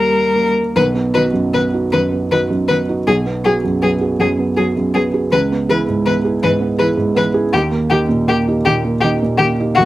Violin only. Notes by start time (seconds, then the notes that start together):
Already playing: A#4
0.76 B4
1.14 B4
1.54 B4
1.92 B4
2.31 B4
2.68 B4
3.07 G#4
3.45 G#4
3.82 G#4
4.20 G#4
4.57 G#4
4.94 G#4
5.32 B4
5.70 B4
6.06 B4
6.43 B4
6.79 B4
7.16 B4
7.53 G4
7.90 G4
8.29 G4
8.65 G4
9.01 G4
9.38 G4
9.75 F#4